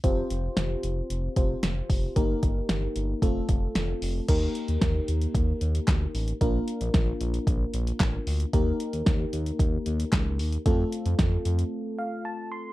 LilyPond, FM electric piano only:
\new Staff \with { instrumentName = "FM electric piano" } { \time 4/4 \key ees \lydian \tempo 4 = 113 << { r1 | r1 | r1 | r1 |
r1 | r2 r8 f''8 a''8 c'''8 | } \\ { <c' f' g' c''>2~ <c' f' g' c''>8 <c' f' g' c''>4. | <bes ees' g' bes'>2 <a c' f' a'>2 | <bes ees' g' bes'>1 | <bes d' f' bes'>1 |
<bes ees' g' bes'>1 | <a c' f' a'>1 | } >> }